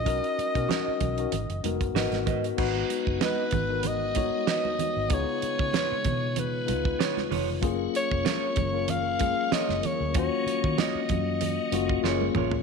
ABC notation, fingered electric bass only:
X:1
M:4/4
L:1/16
Q:"Swing 16ths" 1/4=95
K:G#dor
V:1 name="Fingered electric bass" clef=bass
B,,, z2 B,, z2 B,,,2 G,,, F,,, E,,, F,,, G,,, G,,, G,,2 | G,,,2 z F,,, z2 G,,,4- G,,, z4 G,,, | C,, z2 C, z2 B,,4 C,,2 z2 E,,,2 | F,,,2 z E,,, z2 F,,,4- F,,, z2 F,,, z =D,, |
D,, z2 D, z2 F,,4 F,,,2 F,,,2 =A,,,2 |]